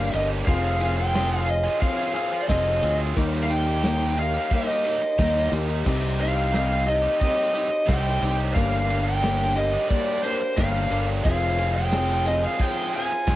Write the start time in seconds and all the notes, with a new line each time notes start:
Already playing: G2 D3 G3 A#3 D4 G4 F5
0.12 G1 G3 A#3 D4 G4, ride, tambourine
0.29 G3 A#3 D4 G4
0.46 F1 F3 C4 F4 G#4 F5, kick, ride, tambourine
0.80 C4 F4 G#4, ride, tambourine
0.96 C4 F4 G#4 G5
1.13 F3 C4 F4 G#4, snare, ride, tambourine
1.31 tambourine
1.38 F5
1.46 C4 F4 G#4 D#5, muted overdriven electric guitar stroke, ride, tambourine
1.64 C4 F4 G#4
1.80 F3 C4 F4 G#4 F5, kick, ride, tambourine
1.97 C4 F4 G#4, tambourine
2.13 F3 C4 F4 G#4 F5, ride, tambourine
2.18 G#4
2.33 muted overdriven electric guitar stroke, tambourine
2.42 D5
2.47 F1 F3 C4 F4 D#5, kick, snare, ride, tambourine
2.51 G#4
2.67 tambourine
2.82 D2 F3 C4 F4 G#4, ride, tambourine
2.99 C4 F4 G#4
3.16 D#2 D#3 G3 A#3 D#4 G4, kick, ride, tambourine
3.35 tambourine
3.43 F5
3.49 A#3 D#4 G4 G5, ride, tambourine
3.67 A#3 D#4 G4, tambourine
3.84 D#3 G3 A#3 D#4 G4, snare, ride, tambourine
4.02 tambourine
4.17 A#3 D#4 G4 F5, muted overdriven electric guitar stroke, ride, tambourine
4.34 A#3 D#4 G4, tambourine
4.51 G3 A#3 D#4 G4 D#5, kick, ride, tambourine
4.68 A#3 D#4 G4, tambourine
4.84 G3 A#3 D#4 G4, ride, tambourine
5.02 muted overdriven electric guitar stroke, tambourine
5.18 D#2 D#3 G3 A#3 D#4 G4, kick, snare, ride, tambourine
5.37 tambourine
5.52 D#2 G3 A#3 D#4 G4, ride, tambourine
5.68 A#3 D#4 G4, tambourine
5.84 C2 C3 G3 C4 D#4 G4, kick, tambourine, crash
6.20 C4 D#4 G4 F5, ride, tambourine
6.35 C4 D#4 G4
6.51 C3 G3 C4 D#4 G4, snare, ride, tambourine
6.71 tambourine
6.86 C4 D#4 G4 D#5, muted overdriven electric guitar stroke, ride, tambourine
7.02 C4 D#4 G4
7.20 G3 C4 D#4 G4 D#5, kick, ride, tambourine
7.35 C4 D#4 G4
7.40 tambourine
7.52 G3 C4 D#4 G4, ride
7.56 C4, tambourine
7.69 muted overdriven electric guitar stroke, tambourine
7.86 C2 C3 G3 C4 D#4 G4 G5, kick, snare, ride, tambourine
8.07 tambourine
8.19 C2 G3 C4 D#4 G4, ride, tambourine
8.37 C4 D#4 G4
8.54 G1 G2 D3 G3 A#3 D4 G4 F5, kick, ride, tambourine
8.90 G3 A#3 D4 G4, ride, tambourine
9.03 A#3 D4 G4 G5
9.08 G3
9.21 G2 D3 G3 A#3 D4 G4, snare, ride, tambourine
9.40 tambourine
9.56 G3 A#3 G4 D#5, muted overdriven electric guitar stroke, ride, tambourine
9.72 G3 A#3 D4 G4
9.89 G3 A#3 D4 G4 D5, kick, ride, tambourine
10.06 G3 A#3 D4 G4, tambourine
10.22 G3 A#3 D4 G4 C5, ride, tambourine
10.41 muted overdriven electric guitar stroke, tambourine
10.56 G1 G2 D3 G3 A#3 D4 G4 F5, kick, snare, ride, tambourine
10.74 tambourine
10.90 G1 G3 A#3 D4 G4, ride, tambourine
11.07 G3 A#3 D4 G4
11.24 F1 F2 C3 F3 G#3 C4 F4 G#4 F5, kick, ride, tambourine
11.58 C4 F4 G#4, ride, tambourine
11.74 F3 G#3 C4 G#4 G5
11.92 F2 C3 F3 G#3 C4 F4 G#4, snare, ride, tambourine
12.09 tambourine
12.25 C4 F4 G#4 D#5, muted overdriven electric guitar stroke, ride, tambourine
12.43 F3 G#3 C4 G#4 F5
12.59 F3 C4 F4 G#4 G5, kick, ride, tambourine
12.76 F3 G#3 C4 G#4, tambourine
12.93 F3 G#3 C4 F4 G#4 G#5, ride, tambourine
13.11 muted overdriven electric guitar stroke, tambourine
13.27 F1 F2 C3 F3 G#3 C4 F4 G#4, kick, snare, ride, tambourine